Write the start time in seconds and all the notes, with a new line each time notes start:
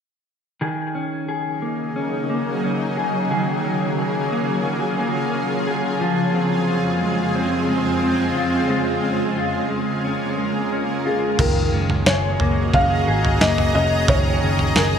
0.59 C#3 D#3 F#3 A#3 D#4 G#4
0.95 C#4
1.28 G#4
1.62 A#3
1.96 C#4
2.30 A#3
2.64 C#4
2.97 G#4
3.31 D#3 F4 G#4
3.64 C#4
3.98 G#4
4.32 A#3
4.66 C#4
4.99 A#3
5.33 C#4
5.67 G#4
5.99 F2 F3 G#3 C4 F4
6.34 C4
6.68 F4
7.01 G#3
7.35 C4
7.69 G#3
8.03 C4
8.36 F4
8.69 G#3 A#3 F4
9.03 C#4
9.37 F4
9.71 G#3
10.04 C#4
10.38 G#3
10.72 C#4
11.06 F4 G#4
11.39 F#1 D#3 F#4 G#4 A#4 D#5 A#5, kick, floor tom, crash
11.73 F#1 C#4
11.90 floor tom
12.06 F#1 G#4 C#5, snare
12.40 F#1 A#3, floor tom
12.73 F#1 C#4 F5, kick, floor tom
13.08 G#1 G#4
13.25 floor tom
13.41 F#1 A#3 D#5, snare
13.58 floor tom
13.75 F1 C#4 D#5
14.07 F#1 D#3 C#5 G#5, kick, floor tom
14.43 F#1 C#4
14.59 floor tom
14.76 F#1 G#4 A#4, snare